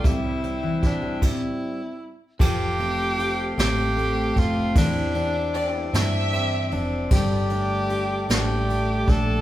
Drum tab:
CC |---x--|x-----|------|------|
RD |------|-xxxxx|xxxxxx|xxxxxx|
HH |xxx---|------|------|------|
SD |------|---o--|---o--|---o--|
BD |o-oo--|o----o|o-----|o----o|